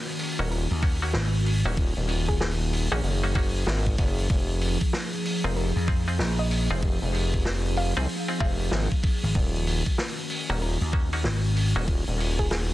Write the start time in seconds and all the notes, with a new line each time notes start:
Already playing: D#3 C#4 F#4
0.07 open hi-hat
0.19 open hi-hat
0.39 D#1 A#3 C#4 D#4 F#4 A#4, cross-stick, open hi-hat
0.51 A#4, open hi-hat
0.71 D#2, open hi-hat
0.83 A#3 C#4 D#4 F#4, kick, open hi-hat
1.02 A#3 C#4 D#4 F#4, open hi-hat
1.13 G#1, snare, open hi-hat
1.34 open hi-hat
1.46 open hi-hat
1.65 D#1 A#3 C#4 D#4 F#4, cross-stick, open hi-hat
1.77 kick, open hi-hat
1.87 open hi-hat
1.97 D#1
2.09 open hi-hat
2.28 G#4, kick, open hi-hat
2.37 open hi-hat
2.41 G#4, snare
2.47 open hi-hat
2.51 open hi-hat
2.60 open hi-hat
2.73 open hi-hat
2.92 A#1 A#3 C#4 D#4 F#4 G#4, cross-stick
3.03 F#1, open hi-hat
3.23 A#3 C#4 D#4 F#4, open hi-hat
3.35 A#3 C#4 D#4 F#4, kick, open hi-hat
3.56 open hi-hat
3.67 G#1, snare, open hi-hat
3.87 kick, open hi-hat
3.98 F#1, kick, open hi-hat
4.18 open hi-hat
4.30 F1 F3 D#4 G#4, kick, open hi-hat
4.50 open hi-hat
4.61 open hi-hat
4.81 kick, open hi-hat
4.93 snare, open hi-hat
5.13 open hi-hat
5.25 open hi-hat
5.44 F1 C4 D#4 F4 G#4 A#4, cross-stick, open hi-hat
5.56 A#4, open hi-hat
5.76 F2, open hi-hat
5.88 C4 D#4 F4 G#4, kick, open hi-hat
6.08 C4 D#4 F4 G#4, open hi-hat
6.19 A#1, snare, open hi-hat
6.39 D#5, open hi-hat
6.51 open hi-hat
6.70 F1 C4 D#4 F4 G#4, cross-stick, open hi-hat
6.82 kick, open hi-hat
7.02 F1, open hi-hat
7.14 open hi-hat
7.34 kick
7.39 open hi-hat
7.45 snare, open hi-hat
7.65 open hi-hat
7.76 F5, open hi-hat
7.97 C2 C4 D#4 F4 G#4, open hi-hat
8.09 open hi-hat
8.28 C4 D#4 F4 G#4, open hi-hat
8.40 F1 C4 D#4 F4 G#4 F5, kick, open hi-hat
8.60 open hi-hat
8.71 G#1, snare, open hi-hat
8.92 kick, open hi-hat
9.03 kick, open hi-hat
9.23 G#1, open hi-hat
9.35 D#1 D#3 C#4 F#4, kick, open hi-hat
9.56 open hi-hat
9.67 open hi-hat
9.86 kick, open hi-hat
9.98 snare, open hi-hat
10.18 open hi-hat
10.30 open hi-hat
10.49 D#1 A#3 C#4 D#4 F#4 A#4, cross-stick, open hi-hat
10.62 A#4, open hi-hat
10.81 D#2, open hi-hat
10.93 A#3 C#4 D#4 F#4, kick
11.13 A#3 C#4 D#4 F#4, open hi-hat
11.24 G#1, snare, open hi-hat
11.44 open hi-hat
11.57 open hi-hat
11.76 D#1 A#3 C#4 D#4 F#4, cross-stick, open hi-hat
11.88 kick, open hi-hat
12.07 D#1, open hi-hat
12.20 open hi-hat
12.39 G#4, kick, open hi-hat
12.51 G#4, snare, open hi-hat
12.70 open hi-hat